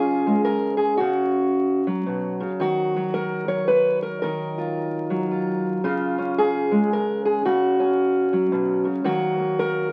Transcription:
0.00 0.99 C#3 medium
0.00 0.98 C#4 soft
0.00 0.47 F4 medium
0.00 0.44 G#4 medium
0.27 0.98 G#3 soft
0.45 0.77 A#4 medium
0.77 0.97 G#4 medium
0.97 1.88 C#3 medium
0.97 2.40 F#4 medium
1.87 2.96 F#3 medium
2.06 2.41 B2 medium
2.40 2.61 C#3 medium
2.60 4.19 D#3 medium
2.60 3.48 F#4 medium
2.96 3.48 F#3 soft
3.14 3.67 A#4 medium
3.48 5.09 F#3 medium
3.48 4.22 C#5 medium
3.68 4.02 B4 medium
4.02 4.21 A#4 medium
4.22 5.81 D#3 medium
4.22 5.83 A#4 medium
4.58 5.30 F4 soft
5.10 5.83 F#3 medium
5.31 5.82 F4 soft
5.84 7.44 C#3 medium
5.84 6.91 F4 medium
6.18 7.42 C#4 soft
6.38 6.91 G#4 medium
6.71 7.42 G#3 medium
6.93 7.25 A#4 medium
7.25 7.45 G#4 medium
7.45 8.32 C#3 medium
7.45 8.86 F#4 medium
7.80 9.06 C#4 soft
8.33 9.04 F#3 medium
8.52 8.85 B2 medium
8.85 9.05 C#3 soft
9.04 9.92 D#3 medium
9.04 9.91 F#3 soft
9.04 9.39 A#3 soft
9.04 9.92 F#4 medium
9.39 9.92 A#3 soft
9.59 9.92 A#4 loud

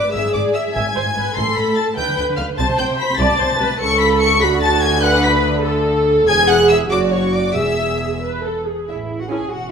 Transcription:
0.00 0.10 B4 medium
0.00 0.14 D5 medium
0.00 0.13 D6 medium
0.04 0.08 G#2 medium
0.13 0.19 G#1 medium
0.13 0.18 G#2 loud
0.13 0.75 G#4 medium
0.13 0.34 E5 medium
0.13 0.34 E6 loud
0.24 0.28 G#2 medium
0.34 0.39 G#1 medium
0.34 0.39 G#2 medium
0.34 0.54 D5 medium
0.34 0.42 D6 medium
0.45 0.49 G#2 medium
0.54 0.76 E5 medium
0.54 0.62 E6 medium
0.66 0.70 G#2 medium
0.75 0.80 G#1 medium
0.75 0.79 G#2 medium
0.75 0.84 E5 medium
0.75 1.37 G#5 loud
0.75 1.36 G#6 loud
0.85 0.90 G#2 medium
0.95 1.01 G#1 medium
0.95 0.99 G#2 medium
0.95 1.04 C5 medium
1.05 1.09 G#2 medium
1.16 1.21 G#1 medium
1.16 1.20 G#2 medium
1.16 1.36 B4 medium
1.25 1.30 G#2 medium
1.36 1.41 A1 medium
1.36 1.40 A2 medium
1.36 1.96 A4 medium
1.36 1.57 C6 loud
1.36 1.57 C7 loud
1.47 1.51 A2 medium
1.56 1.62 A1 medium
1.56 1.61 A2 medium
1.56 1.77 B5 medium
1.56 1.77 B6 loud
1.67 1.71 A2 medium
1.76 1.97 A5 medium
1.76 1.85 A6 loud
1.88 1.92 A2 medium
1.97 2.02 D2 medium
1.97 2.02 D3 medium
1.97 2.57 B4 medium
1.97 2.15 G5 loud
1.97 2.17 G6 loud
2.08 2.12 D3 medium
2.16 2.22 D2 medium
2.16 2.22 D3 medium
2.16 2.24 G5 medium
2.16 2.26 G6 loud
2.28 2.32 D3 loud
2.36 2.42 D2 medium
2.36 2.43 D3 medium
2.36 2.44 F5 medium
2.36 2.46 F6 medium
2.49 2.53 D3 medium
2.58 2.62 C2 medium
2.58 2.63 C3 loud
2.58 3.19 C5 loud
2.58 2.78 A5 loud
2.58 2.67 A6 loud
2.69 2.73 C3 medium
2.78 2.83 C2 medium
2.78 2.83 C3 medium
2.78 2.99 G5 medium
2.78 2.86 G6 loud
2.89 2.93 C3 loud
2.99 3.19 B5 loud
2.99 3.19 B6 loud
3.10 3.14 C3 medium
3.19 3.24 C2 loud
3.19 3.24 C3 loud
3.19 3.40 D5 loud
3.19 3.81 A5 medium
3.19 3.80 A6 loud
3.31 3.35 C3 medium
3.40 3.44 C2 medium
3.40 3.45 C3 medium
3.40 3.60 C5 medium
3.51 3.55 C3 loud
3.60 3.64 C2 medium
3.60 3.64 C3 medium
3.60 3.80 B4 loud
3.70 3.74 C3 medium
3.80 4.38 C#2 medium
3.80 4.38 C#3 loud
3.80 4.41 A4 loud
3.80 4.01 C#6 loud
3.80 4.01 C#7 loud
4.01 4.22 B5 loud
4.01 4.09 B6 loud
4.20 4.42 C#6 loud
4.20 4.41 C#7 loud
4.41 6.28 D2 loud
4.41 6.28 D3 loud
4.41 5.03 F#4 loud
4.41 4.63 B5 loud
4.41 4.49 B6 loud
4.61 4.83 A5 loud
4.61 4.82 A6 loud
4.83 5.03 G#5 loud
4.83 5.03 G#6 loud
5.02 5.64 B4 loud
5.02 5.25 F#5 loud
5.02 5.24 F#6 loud
5.23 5.46 B5 loud
5.23 5.31 B6 loud
5.65 6.26 A4 loud
6.26 6.87 E1 medium
6.26 6.86 E2 loud
6.26 6.91 G#4 loud
6.26 6.48 G#5 loud
6.26 6.48 G#6 loud
6.49 6.70 F#5 loud
6.49 6.70 F#6 loud
6.69 6.80 E5 loud
6.69 6.77 E6 loud
6.91 7.55 F#1 medium
6.91 7.55 F#2 medium
6.91 7.55 F#4 medium
6.91 7.12 D5 loud
6.91 6.99 D6 loud
7.12 7.34 C#5 medium
7.12 7.35 C#6 medium
7.34 7.56 D5 medium
7.34 7.56 D6 loud
7.56 8.68 E1 medium
7.56 8.68 E2 medium
7.56 8.19 G#4 medium
7.56 8.22 E5 medium
7.56 8.23 E6 loud
8.24 8.44 B4 medium
8.44 8.67 A4 medium
8.66 8.88 G#4 medium
8.88 9.41 A1 soft
8.88 9.18 E4 medium
8.88 8.97 E5 soft
9.20 9.31 F#4 medium
9.20 9.31 F#5 soft
9.29 9.40 C#4 soft
9.29 9.40 E4 soft
9.29 9.51 G#4 medium
9.29 9.41 A4 soft
9.29 9.51 G#5 medium
9.50 9.71 E1 soft
9.50 9.71 F#4 medium
9.50 9.71 F#5 medium

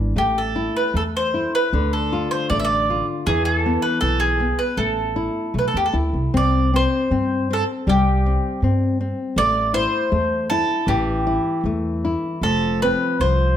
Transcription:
0.00 0.12 G#1 medium
0.00 0.13 E3 medium
0.00 0.16 D4 soft
0.16 0.67 A1 medium
0.16 0.94 A3 medium
0.16 0.38 G4 medium
0.38 0.76 A4 medium
0.56 0.94 E4 soft
0.77 0.96 B4 medium
0.94 1.45 E2 medium
0.94 1.33 A3 soft
0.94 1.02 A4 medium
1.17 1.55 C5 medium
1.34 1.72 E4 soft
1.55 1.93 B4 medium
1.73 2.24 D2 medium
1.73 3.24 D3 medium
1.93 2.31 A4 medium
2.13 2.50 F4 soft
2.31 2.49 C5 medium
2.50 3.00 A1 medium
2.50 2.89 A3 soft
2.50 2.57 D5 medium
2.60 2.66 E5 medium
2.65 3.05 D5 medium
2.90 3.27 F4 soft
3.27 3.76 E2 medium
3.27 4.02 E3 medium
3.27 3.45 G#4 medium
3.45 3.84 A4 medium
3.66 4.02 B3 soft
3.82 4.00 B4 medium
4.01 4.51 B1 medium
4.01 4.39 E3 soft
4.01 4.21 A4 medium
4.20 4.59 G#4 medium
4.40 4.77 B3 soft
4.59 4.78 B4 medium
4.77 5.27 A1 medium
4.77 5.53 A3 medium
4.77 5.53 A4 medium
5.16 5.54 E4 soft
5.54 5.67 B1 medium
5.54 5.93 A3 soft
5.59 5.67 B4 medium
5.68 5.76 A4 medium
5.74 5.92 E2 medium
5.74 5.85 G4 medium
5.86 5.94 A4 medium
5.93 6.12 D2 medium
5.93 6.32 E4 soft
6.13 6.32 C2 medium
6.34 6.85 C2 medium
6.34 6.72 C4 medium
6.34 6.76 D5 medium
6.74 7.10 C4 soft
6.74 7.53 C5 medium
7.11 7.61 G2 medium
7.11 7.48 C4 medium
7.51 7.87 C4 soft
7.51 7.63 A4 medium
7.87 8.36 C2 medium
7.87 9.33 G3 medium
7.87 8.60 G4 medium
8.26 8.62 C4 soft
8.62 9.10 G2 medium
8.62 8.99 C4 soft
9.01 9.36 C4 medium
9.36 9.85 A1 medium
9.36 10.11 A3 medium
9.36 9.72 D5 loud
9.74 10.10 E4 medium
9.74 10.49 C5 loud
10.12 10.61 E2 medium
10.12 10.48 A3 medium
10.50 10.87 E4 medium
10.50 10.88 A4 medium
10.87 11.37 A1 medium
10.87 12.39 E3 medium
10.87 11.60 G4 medium
11.27 11.63 E4 soft
11.64 12.15 E2 medium
11.64 12.02 A3 soft
12.05 12.42 E4 soft
12.41 12.92 F1 medium
12.41 13.20 F3 medium
12.41 12.82 A4 medium
12.82 13.20 C4 soft
12.82 13.20 B4 medium
13.20 13.57 C2 medium
13.20 13.57 F3 soft
13.20 13.57 C5 medium

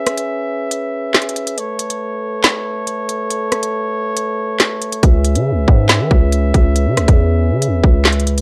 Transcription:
0.00 1.54 C#4 medium
0.00 1.54 G#4 medium
0.00 4.99 B4 medium
0.00 1.54 E5 medium
0.07 cross-stick loud
0.07 closed hi-hat medium
0.18 closed hi-hat medium
0.71 closed hi-hat medium
1.15 snare loud
1.15 clap medium
1.15 closed hi-hat soft
1.22 closed hi-hat medium
1.29 closed hi-hat medium
1.36 closed hi-hat medium
1.47 closed hi-hat medium
1.58 5.00 A3 medium
1.58 5.00 A4 medium
1.58 5.00 C#5 medium
1.58 closed hi-hat medium
1.79 closed hi-hat medium
1.90 closed hi-hat medium
2.44 snare loud
2.44 clap medium
2.44 closed hi-hat medium
2.87 closed hi-hat medium
3.09 closed hi-hat medium
3.30 closed hi-hat medium
3.52 cross-stick medium
3.52 closed hi-hat medium
3.63 closed hi-hat medium
4.17 closed hi-hat medium
4.60 snare loud
4.60 clap medium
4.60 closed hi-hat medium
4.82 closed hi-hat medium
4.92 closed hi-hat medium
5.03 5.37 C#2 loud
5.03 8.41 C#4 medium
5.03 8.41 G#4 medium
5.03 8.41 B4 medium
5.03 8.41 E5 medium
5.03 kick loud
5.03 closed hi-hat medium
5.24 closed hi-hat medium
5.35 5.53 C#3 loud
5.35 closed hi-hat medium
5.52 5.67 C#2 loud
5.68 6.02 G#2 loud
5.68 kick loud
5.89 snare loud
5.89 clap medium
5.89 closed hi-hat medium
6.00 6.10 E3 loud
6.11 6.52 C#2 loud
6.11 kick loud
6.32 closed hi-hat medium
6.54 6.88 C#2 loud
6.54 kick medium
6.54 closed hi-hat medium
6.76 closed hi-hat medium
6.87 6.99 C#3 loud
6.97 7.08 C#2 medium
6.97 cross-stick loud
6.97 closed hi-hat medium
7.08 7.53 E2 loud
7.08 kick loud
7.08 closed hi-hat medium
7.51 7.69 C#3 loud
7.62 closed hi-hat medium
7.67 7.83 E2 loud
7.84 8.41 C#2 loud
7.84 kick loud
8.05 snare loud
8.05 clap medium
8.05 closed hi-hat soft
8.12 closed hi-hat medium
8.20 closed hi-hat medium
8.27 closed hi-hat medium
8.38 closed hi-hat medium

